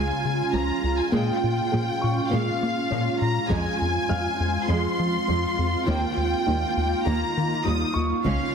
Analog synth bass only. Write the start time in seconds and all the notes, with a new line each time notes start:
Already playing: C#2
0.25 C#3
0.54 C#2
0.84 C#2
1.13 A#2
1.44 A#2
1.74 A#2
2.03 A#2
2.33 A#2
2.63 A#3
2.91 A#2
3.21 A#2
3.51 F2
3.81 F2
4.11 F2
4.40 F2
4.70 F2
4.99 F3
5.28 F2
5.58 F2
5.88 D#2
6.17 D#2
6.47 D#2
6.77 D#2
7.06 D#2
7.37 D#3
7.67 D#2
7.95 D#2
8.25 C#2